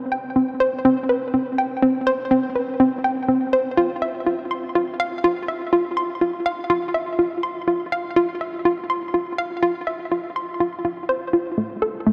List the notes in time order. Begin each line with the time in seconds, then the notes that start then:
0.12 G5
0.36 C4
0.60 C5
0.85 C4
1.09 B4
1.34 C4
1.58 G5
1.82 C4
2.07 C5
2.31 C4
2.56 B4
2.80 C4
3.04 G5
3.29 C4
3.53 C5
3.77 F4
4.02 E5
4.27 F4
4.51 C6
4.75 F4
5.00 F5
5.24 F4
5.48 E5
5.73 F4
5.97 C6
6.21 F4
6.46 F5
6.70 F4
6.94 E5
7.19 F4
7.43 C6
7.68 F4
7.92 F5
8.16 F4
8.41 E5
8.65 F4
8.90 C6
9.14 F4
9.38 F5
9.63 F4
9.87 E5
10.12 F4
10.36 C6
10.60 F4
10.85 F4
11.09 C5
11.33 F4
11.58 A3
11.82 A4
12.07 A3